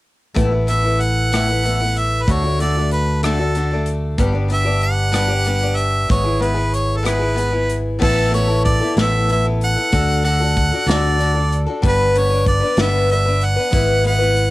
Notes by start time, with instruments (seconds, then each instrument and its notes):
0.34 fingered electric bass A1, steel-string acoustic guitar A2 E3 A3 B3 E4, kick, closed hi-hat
0.50 steel-string acoustic guitar A3 B3 E4
0.67 steel-string acoustic guitar E3 A3 B3 E4, harmonica E5, closed hi-hat
0.84 steel-string acoustic guitar A3 B3 E4
1.00 harmonica F#5, closed hi-hat
1.32 steel-string acoustic guitar A2 E3 A3 B3 E4, cross-stick, closed hi-hat
1.48 steel-string acoustic guitar A3 B3 E4
1.63 steel-string acoustic guitar E3 A3 B3 E4, closed hi-hat
1.80 steel-string acoustic guitar A3 B3 E4
1.97 harmonica E5, closed hi-hat
2.22 harmonica B4
2.27 fingered electric bass D2, steel-string acoustic guitar D3 A3 D4 F#4, kick, closed hi-hat
2.32 harmonica C#5
2.43 steel-string acoustic guitar A3 D4 F#4
2.59 steel-string acoustic guitar D3 A3 D4 F#4, harmonica D5, closed hi-hat
2.76 steel-string acoustic guitar A3 D4 F#4
2.91 harmonica B4, closed hi-hat
3.23 steel-string acoustic guitar D3 A3 D4 F#4, harmonica A4, cross-stick, closed hi-hat
3.39 steel-string acoustic guitar A3 D4 F#4
3.55 steel-string acoustic guitar D3 A3 D4 F#4, closed hi-hat
3.71 steel-string acoustic guitar A3 D4 F#4
3.86 closed hi-hat
4.18 fingered electric bass G1, steel-string acoustic guitar G2 D3 G3 B3 D4 G4, kick, closed hi-hat
4.32 steel-string acoustic guitar G3 B3 D4 G4
4.48 steel-string acoustic guitar G3 B3 D4 G4, closed hi-hat
4.53 harmonica E5
4.65 steel-string acoustic guitar G3 B3 D4 G4
4.82 harmonica F#5, closed hi-hat
5.12 steel-string acoustic guitar G2 D3 G3 B3 D4 G4, cross-stick, closed hi-hat
5.28 steel-string acoustic guitar B3 D4 G4
5.32 steel-string acoustic guitar G3
5.45 steel-string acoustic guitar G3 B3 D4 G4, closed hi-hat
5.62 steel-string acoustic guitar G3 B3 D4 G4
5.77 harmonica E5, closed hi-hat
6.09 fingered electric bass G#1, steel-string acoustic guitar G#3 B3 E4 G#4, harmonica C#5, kick, closed hi-hat
6.24 steel-string acoustic guitar B3 E4 G#4
6.40 steel-string acoustic guitar G#3 B3 E4 G#4, harmonica B4, closed hi-hat
6.54 steel-string acoustic guitar B3 E4 G#4
6.74 harmonica C#5, closed hi-hat
6.97 harmonica A4
7.03 steel-string acoustic guitar G#3 B3 E4 G#4, harmonica B4, cross-stick, closed hi-hat
7.19 steel-string acoustic guitar B3 E4 G#4
7.34 steel-string acoustic guitar G#3 B3 E4 G#4, closed hi-hat
7.51 steel-string acoustic guitar B3 E4 G#4
7.69 closed hi-hat
7.99 fingered electric bass A1, steel-string acoustic guitar A2 A3 B3 E4 A4, harmonica A4, kick, crash
8.31 steel-string acoustic guitar A3 B3 E4 A4, harmonica C#5, closed hi-hat
8.47 steel-string acoustic guitar B3 E4 A4
8.65 harmonica D5, kick, closed hi-hat
8.80 steel-string acoustic guitar B3 E4 A4
8.97 fingered electric bass A1, steel-string acoustic guitar A2 A3 B3 E4 A4, snare, closed hi-hat
9.01 harmonica E5
9.28 steel-string acoustic guitar A3 B3 E4 A4, harmonica E5, closed hi-hat
9.45 steel-string acoustic guitar B3 E4 A4
9.61 harmonica F#5, closed hi-hat
9.76 steel-string acoustic guitar B3 E4 A4
9.92 fingered electric bass D2, steel-string acoustic guitar D3 D4 F#4 A4, kick, closed hi-hat
10.24 steel-string acoustic guitar D3 D4 F#4 A4, harmonica F#5, closed hi-hat
10.40 steel-string acoustic guitar D4 F#4 A4
10.57 kick, closed hi-hat
10.72 steel-string acoustic guitar D4 F#4 A4
10.86 fingered electric bass D2, steel-string acoustic guitar D3 D4 F#4 A4, harmonica D5, snare, closed hi-hat
11.19 steel-string acoustic guitar D3 D4 F#4 A4, closed hi-hat
11.34 steel-string acoustic guitar D4 F#4 A4
11.52 closed hi-hat
11.66 steel-string acoustic guitar D4 F#4 A4
11.82 fingered electric bass G1, steel-string acoustic guitar G3 B3 D4 B4, kick, closed hi-hat
11.88 harmonica B4
12.14 steel-string acoustic guitar G3 B3 D4 B4, harmonica C#5, closed hi-hat
12.30 steel-string acoustic guitar B3 D4 B4
12.46 harmonica D5, kick, closed hi-hat
12.60 steel-string acoustic guitar B3 D4 B4
12.77 fingered electric bass G1, steel-string acoustic guitar G3 B3 D4 B4, harmonica E5, snare, closed hi-hat
13.10 steel-string acoustic guitar G3 B3 D4 B4, harmonica E5, closed hi-hat
13.25 steel-string acoustic guitar B3 D4 B4
13.41 harmonica F#5, closed hi-hat
13.56 steel-string acoustic guitar B3 D4 B4
13.71 fingered electric bass G#1, steel-string acoustic guitar G#3 B3 E4 B4, kick, closed hi-hat
14.04 steel-string acoustic guitar G#3 B3 E4 B4, harmonica F#5, closed hi-hat
14.19 steel-string acoustic guitar B3 E4 B4
14.36 closed hi-hat